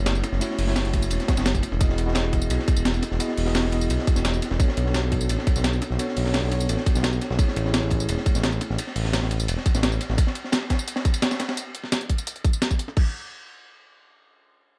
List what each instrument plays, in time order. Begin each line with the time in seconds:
Already playing: analog synth bass F#1, tine electric piano A3 C#4 E4 F#4 C#5
0.06 snare, closed hi-hat, ride, tambourine
0.15 tambourine
0.23 snare, closed hi-hat, ride, tambourine
0.32 analog synth bass F#1, snare
0.40 tine electric piano A3 C#4 E4 F#4 C#5, closed hi-hat, ride, tambourine
0.51 snare
0.59 analog synth bass F#1, closed hi-hat, open hi-hat
0.66 tine electric piano A3 C#4 E4 F#4 C#5, snare
0.76 snare, closed hi-hat, ride, tambourine
0.85 analog synth bass F#1, snare, closed hi-hat
0.91 tine electric piano A3 C#4 E4 F#4, kick, closed hi-hat, ride
0.95 tine electric piano C#5
1.02 closed hi-hat, tambourine
1.10 analog synth bass E1, closed hi-hat, ride, tambourine
1.20 snare, closed hi-hat
1.28 kick, snare, closed hi-hat, ride, tambourine
1.37 analog synth bass F#1, snare, ride, tambourine
1.46 snare, closed hi-hat, ride, tambourine
1.54 kick, closed hi-hat, ride, tambourine
1.63 closed hi-hat, ride, tambourine
1.72 analog synth bass E1, snare
1.79 tine electric piano B3 E4 F#4 G#4 D#5, kick, closed hi-hat, ride, tambourine
1.89 snare
1.98 analog synth bass E1, closed hi-hat, ride
2.06 tine electric piano B3 E4 F#4 G#4 D#5, snare
2.15 snare, closed hi-hat, ride, tambourine
2.24 analog synth bass E1, ride
2.31 tine electric piano B3 E4 F#4 G#4, kick, snare, closed hi-hat, ride
2.35 tine electric piano D#5
2.42 tambourine
2.50 analog synth bass B1, closed hi-hat, ride, tambourine
2.59 snare
2.68 kick, closed hi-hat, ride, tambourine
2.77 analog synth bass E1, tambourine
2.85 snare, closed hi-hat, ride, tambourine
2.94 tambourine
3.02 snare, closed hi-hat, ride, tambourine
3.11 analog synth bass E1, snare
3.19 tine electric piano B3 E4 F#4 G#4 D#5, closed hi-hat, ride, tambourine
3.28 snare
3.37 analog synth bass E1, closed hi-hat, open hi-hat
3.45 tine electric piano B3 E4 F#4 G#4 D#5, snare
3.55 snare, closed hi-hat, ride, tambourine
3.64 analog synth bass E1, snare
3.70 tine electric piano B3 E4 F#4 G#4, closed hi-hat, ride
3.75 tine electric piano D#5
3.81 tambourine
3.90 analog synth bass B1, closed hi-hat, ride, tambourine
3.99 snare
4.07 kick, closed hi-hat, ride, tambourine
4.16 analog synth bass E1, snare, tambourine
4.25 snare, closed hi-hat, ride, tambourine
4.34 tambourine
4.42 snare, closed hi-hat, ride, tambourine
4.51 analog synth bass E1, snare
4.59 tine electric piano B3 D4 F#4 A4 C#5, kick, closed hi-hat, ride, tambourine
4.68 snare
4.77 analog synth bass B1, closed hi-hat, ride
4.85 tine electric piano B3 D4 F#4 A4 C#5, snare
4.94 snare, closed hi-hat, ride, tambourine
5.03 analog synth bass B1, ride
5.10 tine electric piano B3 D4 F#4 A4, kick, closed hi-hat, ride
5.14 tine electric piano C#5
5.21 tambourine
5.29 analog synth bass A1, closed hi-hat, ride, tambourine
5.39 snare
5.47 kick, closed hi-hat, ride, tambourine
5.56 analog synth bass B1, snare, tambourine
5.64 snare, closed hi-hat, ride, tambourine
5.73 tambourine
5.82 snare, closed hi-hat, ride, tambourine
5.90 analog synth bass B1, snare
5.98 tine electric piano B3 D4 F#4 A4 C#5, closed hi-hat, ride, tambourine
6.08 snare
6.16 analog synth bass B1, closed hi-hat, open hi-hat
6.24 tine electric piano B3 D4 F#4 A4 C#5, snare
6.34 snare, closed hi-hat, ride, tambourine
6.42 analog synth bass B1, snare
6.49 tine electric piano B3 D4 F#4 A4, snare, closed hi-hat, ride
6.54 tine electric piano C#5
6.60 closed hi-hat, tambourine
6.69 analog synth bass A1, closed hi-hat, ride, tambourine
6.77 snare
6.86 kick, closed hi-hat, ride, tambourine
6.95 analog synth bass B1, snare, tambourine
7.03 snare, closed hi-hat, ride, tambourine
7.13 tambourine
7.21 snare, closed hi-hat, ride, tambourine
7.30 analog synth bass B1, snare
7.38 tine electric piano A3 C#4 E4 G#4 C#5, kick, closed hi-hat, ride, tambourine
7.48 snare
7.56 analog synth bass A1, closed hi-hat, ride
7.64 tine electric piano A3 C#4 E4 G#4 C#5, snare
7.74 snare, closed hi-hat, ride, tambourine
7.82 analog synth bass A1, ride
7.89 tine electric piano A3 C#4 E4 G#4, kick, closed hi-hat, ride
7.93 tine electric piano C#5
8.00 tambourine
8.09 analog synth bass E1, closed hi-hat, ride, tambourine
8.17 snare
8.26 kick, closed hi-hat, ride, tambourine
8.35 analog synth bass A1, snare, tambourine
8.43 snare, closed hi-hat, ride, tambourine
8.52 tambourine
8.61 snare, closed hi-hat, ride, tambourine
8.70 analog synth bass A1, snare
8.78 closed hi-hat, ride, tambourine
8.87 snare
8.96 analog synth bass A1, closed hi-hat, open hi-hat
9.04 snare
9.13 snare, closed hi-hat, ride, tambourine
9.22 analog synth bass A1, snare
9.31 snare, closed hi-hat, ride
9.40 tambourine
9.48 analog synth bass E1, closed hi-hat, ride, tambourine
9.57 snare
9.66 kick, closed hi-hat, ride, tambourine
9.74 analog synth bass A1, snare, tambourine
9.83 snare, closed hi-hat, ride, tambourine
9.92 tambourine
10.00 snare, closed hi-hat, ride, tambourine
10.09 analog synth bass A1, snare
10.18 kick, closed hi-hat, ride, tambourine
10.27 snare
10.35 closed hi-hat, ride
10.44 snare
10.52 snare, closed hi-hat, ride, tambourine
10.62 ride
10.70 kick, snare, closed hi-hat, ride
10.79 tambourine
10.88 closed hi-hat, ride, tambourine
10.96 snare, ride
11.05 kick, closed hi-hat, tambourine
11.14 ride, tambourine
11.22 snare, closed hi-hat, ride, tambourine
11.31 snare, ride, tambourine
11.39 snare, closed hi-hat, ride, tambourine
11.49 snare, ride
11.57 closed hi-hat, tambourine
11.75 closed hi-hat
11.84 snare
11.92 snare, closed hi-hat, tambourine
12.01 closed hi-hat
12.10 kick, closed hi-hat
12.18 closed hi-hat, tambourine
12.27 closed hi-hat, tambourine
12.36 closed hi-hat
12.45 kick, closed hi-hat, tambourine
12.53 tambourine
12.62 snare, closed hi-hat, tambourine
12.71 kick, closed hi-hat, tambourine
12.79 closed hi-hat, tambourine
12.88 snare
12.97 kick, crash